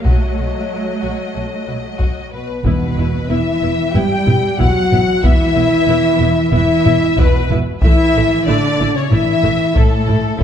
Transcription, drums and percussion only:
0.05 taiko
2.00 taiko
2.65 taiko
3.95 taiko low-mid
4.28 taiko low-mid
4.61 taiko
4.92 taiko low-mid
5.24 taiko
6.53 taiko low-mid
6.86 taiko low-mid
7.18 taiko
7.50 taiko low-mid
7.82 taiko
9.11 taiko low-mid
9.43 taiko low-mid
9.76 taiko
10.09 taiko low-mid

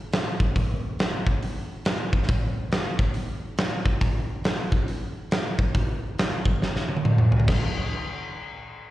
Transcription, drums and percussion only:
0.12 snare, open hi-hat
0.40 kick
0.56 kick, open hi-hat
0.99 snare, open hi-hat
1.27 kick
1.43 open hi-hat
1.85 snare, open hi-hat
2.13 kick
2.23 snare
2.28 kick, open hi-hat
2.72 snare, open hi-hat
2.99 kick
3.14 open hi-hat
3.58 snare, open hi-hat
3.86 kick
4.01 kick, open hi-hat
4.44 snare, open hi-hat
4.72 kick
4.88 open hi-hat
5.31 snare, open hi-hat
5.59 kick
5.75 kick, open hi-hat
6.18 snare, open hi-hat
6.45 kick
6.62 snare
6.76 snare
6.89 high tom
6.97 high tom
7.05 mid tom
7.18 mid tom
7.32 floor tom
7.40 floor tom
7.48 kick, snare, crash

